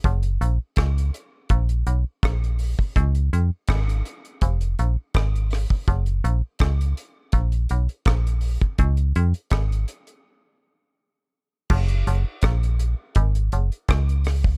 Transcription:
<<
  \new Staff \with { instrumentName = "FM bass" } { \clef bass \time 4/4 \key fis \major \tempo 4 = 82 fis,,8 ais,,16 r16 cis,8 r8 ais,,8 b,,16 r16 ais,,8. r16 | cis,8 eis,16 r16 gis,,8 r8 eis,,8 ais,,16 r16 gis,,8. r16 | fis,,8 ais,,16 r16 cis,8 r8 ais,,8 b,,16 r16 ais,,8. r16 | cis,8 eis,16 r16 gis,,8 r2 r8 |
fis,,8 fis,,16 r16 ais,,8. r16 gis,,8 fis,,16 r16 cis,4 | }
  \new DrumStaff \with { instrumentName = "Drums" } \drummode { \time 4/4 <hh bd>16 hh16 hh8 <hh bd ss>16 hh16 hh8 <hh bd>16 hh16 hh8 <hh bd ss>16 hh16 hho16 bd16 | <hh bd>16 hh16 hh8 <hh bd ss>16 hh16 hh16 hh16 <hh bd>16 hh16 hh8 <hh bd ss>16 hh16 <hho ss>16 bd16 | <hh bd>16 hh16 hh8 <hh bd ss>16 hh16 hh8 <hh bd>16 hh16 hh16 hh16 <hh bd ss>16 hh16 hho16 <hh bd>16 | <hh bd>16 hh16 hh16 hh16 <hh bd ss>16 hh16 hh16 hh16 r4 r4 |
<cymc bd>16 hh16 hh8 <hh bd ss>16 hh16 hh8 <hh bd>16 hh16 hh16 hh16 <hh bd ss>16 hh16 <hho ss>16 bd16 | }
>>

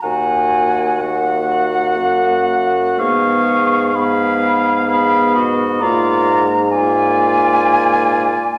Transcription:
<<
  \new Staff \with { instrumentName = "Flute" } { \time 3/4 \key ees \minor \tempo 4 = 63 aes''4 ges''2 | des'''4 ces'''4 ces'''8 r8 | bes''4 aes''2 | }
  \new Staff \with { instrumentName = "Oboe" } { \time 3/4 \key ees \minor ges''4 ges''2 | f''4 f''4 f''8 ees''8 | d''8 r8 d''2 | }
  \new Staff \with { instrumentName = "Clarinet" } { \time 3/4 \key ees \minor ges'4 ges'2 | aes'4 aes'4 aes'8 ges'8 | f'8 r8 f'2 | }
  \new Staff \with { instrumentName = "French horn" } { \time 3/4 \key ees \minor bes4 bes2 | ces'4 ces'4 ces'4 | bes8 r8 bes2 | }
  \new Staff \with { instrumentName = "Bassoon" } { \clef bass \time 3/4 \key ees \minor ees,2 ges,4 | aes,2. | aes,2~ aes,8 r8 | }
>>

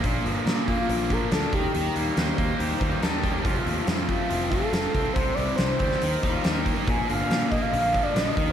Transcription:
<<
  \new Staff \with { instrumentName = "Soft synth lead" } { \time 4/4 \key bes \major \tempo 4 = 140 r4. f'4 bes'8 a'8 g'8~ | g'4. r2 r8 | r4. f'4 a'4. | c''8 d''8 c''2~ c''8 r8 |
r4. ees''16 f''16 f''8. d''16 ees''8. r16 | }
  \new Staff \with { instrumentName = "Lead electric guitar" } { \time 4/4 \key bes \major r1 | r4 c''2 a'8 g'8 | f'4~ f'16 r2 r8. | r2 r8 f'8 bes'8 ees''8 |
aes''8 f''8. r2 r8. | }
  \new Staff \with { instrumentName = "Distorted electric guitar" } { \time 4/4 \key bes \major bes,8 d8 d8 bes8 f'8 d'8 f'8 ees8 | ees8 bes8 ees8 bes8 g'8 ees'8 g'8 ees'8 | f,8 c8 f8 a8 f'8 c'8 f'8 c'8 | c8 e8 e8 g8 ees8 ees'8 g'8 ees'8 |
bes,8 d8 d8 bes8 f'8 d'8 f'8 ees8 | }
  \new Staff \with { instrumentName = "Overdriven electric guitar" } { \clef bass \time 4/4 \key bes \major bes,8 f8 bes,8 bes8 bes,8 f8 d'8 ees8 | ees8 g8 ees8 bes8 ees8 g8 ees'8 bes8 | f8 a8 f8 c'8 f8 a8 f'8 c'8 | c8 g8 c8 c'8 ees8 g8 ees'8 bes8 |
bes,8 d8 d8 bes8 d8 f8 d'8 ees8 | }
  \new Staff \with { instrumentName = "Picked electric bass" } { \clef bass \time 4/4 \key bes \major bes,,8 g,,8 bes,4 bes,,4 d,8 ees,8 | ees,8 ees,8 ees,8 ees,8 ees,8 ees,8 ees,4 | f,,8 ees,8 f,4 f,,4 f,,8 c,8 | c,8 c,8 c,8 d,8 ees,8 ees,8 ees,4 |
bes,,8 g,,8 bes,4 bes,,4 bes,,8 ees,8 | }
  \new DrumStaff \with { instrumentName = "Drums" } \drummode { \time 4/4 <hho bd>8 hho8 <hho sn>8 <hho bd>8 hho8 <hho bd>8 <hho sn>8 <hho bd>8 | hho8 hho8 <hho sn>8 <hho bd>8 hho8 <hho bd>8 <hho sn>8 <hho bd>8 | <hho bd>8 hho8 <hho sn>8 <hho bd>8 hho8 <hho bd>8 <hho sn>8 <hho bd>8 | <hho bd>8 hho8 <hho sn>8 <hho bd>16 sn16 hho8 <hho bd>8 <hho sn>8 <hho bd>8 |
<hho bd>8 hho8 <hho sn>8 <hho bd>8 hho8 <hho bd>8 <hho sn>8 <hho bd>8 | }
>>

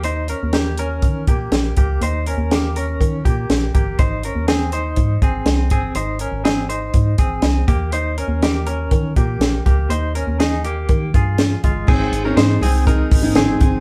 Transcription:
<<
  \new Staff \with { instrumentName = "Clean electric guitar" } { \time 4/4 \key aes \major \tempo 4 = 122 <ees' c''>8 <des' bes'>8 <bes g'>8 <des' bes'>4 <bes g'>4 <bes g'>8 | <ees' c''>8 <des' bes'>8 <bes g'>8 <des' bes'>4 <bes g'>4 <bes g'>8 | <ees' c''>8 <des' bes'>8 <c' aes'>8 <ees' c''>4 <c' aes'>4 <c' aes'>8 | <ees' c''>8 <des' bes'>8 <c' aes'>8 <ees' c''>4 <c' aes'>4 <bes g'>8 |
<ees' c''>8 <des' bes'>8 <bes g'>8 <des' bes'>4 <bes g'>4 <bes g'>8 | <ees' c''>8 <des' bes'>8 <ees' aes'>8 <bes g'>4 <f' aes'>4 <aes f'>8 | <c' aes'>8. <des' bes'>16 <ees' c''>8 <c' aes'>8 <ees' bes'>4 <c' aes'>4 | }
  \new Staff \with { instrumentName = "Steel-string acoustic guitar" } { \time 4/4 \key aes \major r1 | r1 | r1 | r1 |
r1 | r1 | <aes c' ees' aes'>8. <aes c' ees' aes'>8. <aes c' ees' aes'>8 <aes c' ees' aes'>8. <aes, ees aes c' ees' aes'>8. <aes c' ees' aes'>8 | }
  \new Staff \with { instrumentName = "FM bass" } { \clef bass \time 4/4 \key aes \major ees,8. ees,4~ ees,16 ees8 bes,8 bes,,8 des,8 | ees,8. ees,4~ ees,16 ees8 bes,8 bes,,8 g,,8 | aes,,8. ees,4~ ees,16 aes,8 aes,,8 c,8 g,,8 | aes,,8. aes,,4~ aes,,16 aes,8 aes,,8 c,8 ees,8~ |
ees,8. ees,4~ ees,16 ees8 bes,8 bes,,8 des,8 | ees,8. ees,4~ ees,16 ees8 g,4 g,,8 | aes,,8 aes,,8 aes,8 c,4 aes,,8 g,,8 g,,8 | }
  \new DrumStaff \with { instrumentName = "Drums" } \drummode { \time 4/4 hh8 hh8 <hh sn>8 hh8 <hh bd>8 <hh bd>8 <hh sn>8 <hh bd>8 | hh8 hh8 <hh sn>8 hh8 <hh bd>8 <hh bd>8 <hh sn>8 <hh bd>8 | <hh bd>8 hh8 <hh sn>8 hh8 <hh bd>8 <hh bd>8 <hh sn>8 <hh bd>8 | hh8 hh8 <hh sn>8 hh8 <hh bd>8 <hh bd>8 <hh sn>8 <hh bd>8 |
hh8 hh8 <hh sn>8 hh8 <hh bd>8 <hh bd>8 <hh sn>8 <hh bd>8 | hh8 hh8 <hh sn>8 hh8 <hh bd>8 <hh bd>8 <hh sn>8 <hh bd>8 | <cymc bd>8 <hho hhp>8 <hho hhp sn>8 <hho hhp>8 <hho hhp bd>8 <hho hhp bd>8 <hho hhp sn>8 <hho hhp bd>8 | }
>>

